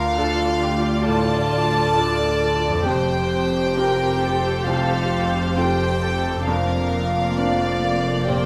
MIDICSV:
0, 0, Header, 1, 9, 480
1, 0, Start_track
1, 0, Tempo, 899550
1, 1529, Time_signature, 4, 2, 24, 8
1, 4513, End_track
2, 0, Start_track
2, 0, Title_t, "Violin section"
2, 0, Program_c, 0, 48
2, 0, Note_on_c, 0, 77, 73
2, 555, Note_off_c, 0, 77, 0
2, 575, Note_on_c, 0, 81, 71
2, 1528, Note_off_c, 0, 81, 0
2, 1537, Note_on_c, 0, 79, 66
2, 2475, Note_off_c, 0, 79, 0
2, 2487, Note_on_c, 0, 77, 62
2, 2970, Note_off_c, 0, 77, 0
2, 2970, Note_on_c, 0, 79, 62
2, 3453, Note_off_c, 0, 79, 0
2, 3457, Note_on_c, 0, 77, 60
2, 4396, Note_off_c, 0, 77, 0
2, 4420, Note_on_c, 0, 79, 57
2, 4513, Note_off_c, 0, 79, 0
2, 4513, End_track
3, 0, Start_track
3, 0, Title_t, "Violin section"
3, 0, Program_c, 1, 48
3, 0, Note_on_c, 1, 70, 55
3, 87, Note_on_c, 1, 69, 61
3, 93, Note_off_c, 1, 70, 0
3, 328, Note_on_c, 1, 67, 51
3, 332, Note_off_c, 1, 69, 0
3, 567, Note_on_c, 1, 65, 51
3, 572, Note_off_c, 1, 67, 0
3, 1044, Note_on_c, 1, 74, 65
3, 1046, Note_off_c, 1, 65, 0
3, 1516, Note_off_c, 1, 74, 0
3, 1529, Note_on_c, 1, 72, 59
3, 2006, Note_on_c, 1, 70, 62
3, 2010, Note_off_c, 1, 72, 0
3, 2249, Note_off_c, 1, 70, 0
3, 2249, Note_on_c, 1, 69, 56
3, 2971, Note_off_c, 1, 69, 0
3, 2979, Note_on_c, 1, 72, 58
3, 3212, Note_off_c, 1, 72, 0
3, 3213, Note_on_c, 1, 69, 54
3, 3454, Note_off_c, 1, 69, 0
3, 3458, Note_on_c, 1, 70, 52
3, 3935, Note_off_c, 1, 70, 0
3, 3939, Note_on_c, 1, 74, 59
3, 4417, Note_off_c, 1, 74, 0
3, 4420, Note_on_c, 1, 72, 50
3, 4513, Note_off_c, 1, 72, 0
3, 4513, End_track
4, 0, Start_track
4, 0, Title_t, "Viola section"
4, 0, Program_c, 2, 48
4, 0, Note_on_c, 2, 65, 60
4, 0, Note_on_c, 2, 74, 61
4, 1508, Note_off_c, 2, 65, 0
4, 1508, Note_off_c, 2, 74, 0
4, 1526, Note_on_c, 2, 67, 60
4, 1526, Note_on_c, 2, 72, 60
4, 3430, Note_off_c, 2, 67, 0
4, 3431, Note_off_c, 2, 72, 0
4, 3458, Note_on_c, 2, 74, 57
4, 3460, Note_on_c, 2, 58, 59
4, 4513, Note_off_c, 2, 58, 0
4, 4513, Note_off_c, 2, 74, 0
4, 4513, End_track
5, 0, Start_track
5, 0, Title_t, "French horn"
5, 0, Program_c, 3, 60
5, 0, Note_on_c, 3, 65, 78
5, 566, Note_on_c, 3, 69, 86
5, 574, Note_off_c, 3, 65, 0
5, 1524, Note_on_c, 3, 67, 84
5, 1532, Note_off_c, 3, 69, 0
5, 2485, Note_on_c, 3, 65, 67
5, 2493, Note_off_c, 3, 67, 0
5, 2878, Note_off_c, 3, 65, 0
5, 2969, Note_on_c, 3, 67, 73
5, 3297, Note_off_c, 3, 67, 0
5, 3456, Note_on_c, 3, 65, 74
5, 4409, Note_on_c, 3, 67, 73
5, 4417, Note_off_c, 3, 65, 0
5, 4513, Note_off_c, 3, 67, 0
5, 4513, End_track
6, 0, Start_track
6, 0, Title_t, "Grand piano"
6, 0, Program_c, 4, 0
6, 0, Control_c, 4, 64, 127
6, 0, Note_on_c, 4, 38, 50
6, 81, Note_off_c, 4, 38, 0
6, 96, Note_on_c, 4, 62, 37
6, 99, Note_on_c, 4, 65, 39
6, 99, Note_on_c, 4, 69, 42
6, 554, Note_off_c, 4, 62, 0
6, 556, Note_off_c, 4, 65, 0
6, 556, Note_off_c, 4, 69, 0
6, 577, Note_on_c, 4, 45, 45
6, 1037, Note_off_c, 4, 45, 0
6, 1051, Note_on_c, 4, 62, 42
6, 1055, Note_on_c, 4, 65, 39
6, 1056, Note_on_c, 4, 69, 41
6, 1508, Note_off_c, 4, 62, 0
6, 1510, Note_off_c, 4, 65, 0
6, 1510, Note_off_c, 4, 69, 0
6, 1527, Note_on_c, 4, 41, 51
6, 1540, Control_c, 4, 64, 0
6, 1611, Control_c, 4, 64, 127
6, 1994, Note_off_c, 4, 41, 0
6, 2008, Note_on_c, 4, 60, 36
6, 2011, Note_on_c, 4, 65, 37
6, 2014, Note_on_c, 4, 67, 39
6, 2468, Note_off_c, 4, 60, 0
6, 2470, Note_off_c, 4, 65, 0
6, 2471, Note_off_c, 4, 67, 0
6, 2487, Note_on_c, 4, 36, 43
6, 2955, Note_off_c, 4, 36, 0
6, 2969, Note_on_c, 4, 60, 38
6, 2972, Note_on_c, 4, 65, 40
6, 2974, Note_on_c, 4, 69, 41
6, 3430, Note_off_c, 4, 60, 0
6, 3432, Note_off_c, 4, 65, 0
6, 3433, Note_off_c, 4, 69, 0
6, 3454, Note_on_c, 4, 41, 50
6, 3463, Control_c, 4, 64, 0
6, 3538, Control_c, 4, 64, 127
6, 3918, Note_off_c, 4, 41, 0
6, 3936, Note_on_c, 4, 60, 35
6, 3941, Note_on_c, 4, 62, 36
6, 3941, Note_on_c, 4, 70, 36
6, 4394, Note_off_c, 4, 60, 0
6, 4396, Note_off_c, 4, 62, 0
6, 4397, Note_off_c, 4, 70, 0
6, 4416, Note_on_c, 4, 46, 42
6, 4513, Note_off_c, 4, 46, 0
6, 4513, End_track
7, 0, Start_track
7, 0, Title_t, "Harp"
7, 0, Program_c, 5, 46
7, 0, Note_on_c, 5, 50, 49
7, 0, Note_on_c, 5, 62, 41
7, 0, Note_on_c, 5, 65, 39
7, 0, Note_on_c, 5, 81, 44
7, 1430, Note_on_c, 5, 41, 48
7, 1456, Note_on_c, 5, 60, 42
7, 1472, Note_off_c, 5, 65, 0
7, 1479, Note_on_c, 5, 65, 38
7, 1498, Note_off_c, 5, 50, 0
7, 1502, Note_on_c, 5, 67, 39
7, 1510, Note_off_c, 5, 62, 0
7, 1674, Note_off_c, 5, 81, 0
7, 3352, Note_off_c, 5, 41, 0
7, 3359, Note_on_c, 5, 41, 48
7, 3377, Note_off_c, 5, 60, 0
7, 3383, Note_on_c, 5, 60, 37
7, 3408, Note_on_c, 5, 62, 37
7, 3430, Note_on_c, 5, 58, 36
7, 3459, Note_off_c, 5, 67, 0
7, 3560, Note_off_c, 5, 65, 0
7, 4513, Note_off_c, 5, 41, 0
7, 4513, Note_off_c, 5, 58, 0
7, 4513, Note_off_c, 5, 60, 0
7, 4513, Note_off_c, 5, 62, 0
7, 4513, End_track
8, 0, Start_track
8, 0, Title_t, "Cello section"
8, 0, Program_c, 6, 48
8, 0, Note_on_c, 6, 38, 60
8, 1526, Note_off_c, 6, 38, 0
8, 1528, Note_on_c, 6, 41, 57
8, 3432, Note_off_c, 6, 41, 0
8, 3449, Note_on_c, 6, 41, 55
8, 4513, Note_off_c, 6, 41, 0
8, 4513, End_track
9, 0, Start_track
9, 0, Title_t, "Double bass section"
9, 0, Program_c, 7, 48
9, 0, Note_on_c, 7, 38, 56
9, 1528, Note_off_c, 7, 38, 0
9, 1531, Note_on_c, 7, 29, 58
9, 3433, Note_off_c, 7, 29, 0
9, 3455, Note_on_c, 7, 29, 53
9, 4513, Note_off_c, 7, 29, 0
9, 4513, End_track
0, 0, End_of_file